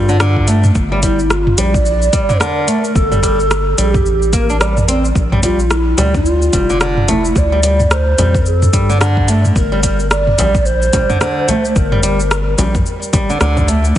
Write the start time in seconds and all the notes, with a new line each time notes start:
Already playing: G2 F4
0.09 D3, cabasa
0.20 D3, cross-stick, cabasa
0.37 kick
0.48 A3, closed hi-hat, cabasa
0.64 mid tom, cabasa
0.75 G1, kick, cabasa
0.92 G3
1.03 G3 E4, kick, closed hi-hat, cabasa
1.19 cabasa
1.30 F4, cross-stick, cabasa
1.47 mid tom
1.58 A#1 G3 D5, closed hi-hat, cabasa
1.74 kick, cabasa
1.86 cabasa
2.02 cabasa
2.13 G3, kick, closed hi-hat, cabasa
2.29 D3, mid tom, cabasa
2.40 D3 A#4, cross-stick, cabasa
2.67 A3, closed hi-hat, cabasa
2.84 cabasa
2.95 G1 A4, kick, cabasa
3.11 G3, mid tom, cabasa
3.23 G3, kick, cross-stick, closed hi-hat, cabasa
3.40 cabasa
3.51 cross-stick, cabasa
3.78 A#1 G3 G4, closed hi-hat, cabasa
3.94 kick, mid tom, cabasa
4.05 A1, cabasa
4.22 cabasa
4.33 A#3 A#4, kick, closed hi-hat, cabasa
4.50 D4, cabasa
4.61 G3 D5, cross-stick, cabasa
4.77 mid tom, cabasa
4.88 C4, closed hi-hat, cabasa
5.05 cabasa
5.15 A#1, kick, cabasa
5.32 G3, mid tom
5.43 G3 F4, kick, closed hi-hat, cabasa
5.59 cabasa
5.71 E4, cross-stick, cabasa
5.98 D2 G3 D5, closed hi-hat, frame drum, cabasa
6.14 F4, kick, mid tom, cabasa
6.26 cabasa
6.42 cabasa
6.53 F1 G3, kick, closed hi-hat, frame drum, cabasa
6.70 D3, cabasa
6.81 D3, cross-stick, cabasa
6.97 mid tom
7.08 A3 E4, closed hi-hat, frame drum, cabasa
7.25 cabasa
7.36 D2 D5, kick, cabasa
7.52 G3
7.63 G3, closed hi-hat, cabasa
7.80 mid tom, cabasa
7.91 C5, cross-stick, cabasa
8.18 F2 G3, closed hi-hat, frame drum, cabasa
8.35 kick, cabasa
8.40 A#4
8.46 A4, cabasa
8.62 mid tom, cabasa
8.73 G2 G3, kick, closed hi-hat, cabasa
8.90 D3, cabasa
9.01 D3, cross-stick, cabasa
9.17 kick
9.28 A3, closed hi-hat, cabasa
9.45 mid tom, cabasa
9.56 G1 A#4, kick, cabasa
9.72 G3
9.83 G3, kick, closed hi-hat, cabasa
10.00 cabasa
10.10 D5, cross-stick, cabasa
10.27 mid tom
10.38 A#1 G3, closed hi-hat, frame drum, cabasa
10.55 kick, cabasa
10.65 C5, cabasa
10.82 cabasa
10.93 G3, kick, closed hi-hat, frame drum, cabasa
11.09 D3, mid tom, cabasa
11.21 D3, cross-stick, cabasa
11.48 A3, closed hi-hat, frame drum, cabasa
11.65 cabasa
11.76 G1 A#4, kick, cabasa
11.92 G3, mid tom
12.03 G3, closed hi-hat, cabasa
12.20 cabasa
12.31 cross-stick, cabasa
12.58 A#1 G3, closed hi-hat, frame drum, cabasa
12.75 kick, mid tom, cabasa
12.86 cabasa
13.02 cabasa
13.13 G3, kick, closed hi-hat, frame drum, cabasa
13.30 D3, cabasa
13.41 D2 D3, cross-stick, cabasa
13.56 kick, mid tom, frame drum, cabasa
13.68 A3, closed hi-hat, cabasa
13.85 cabasa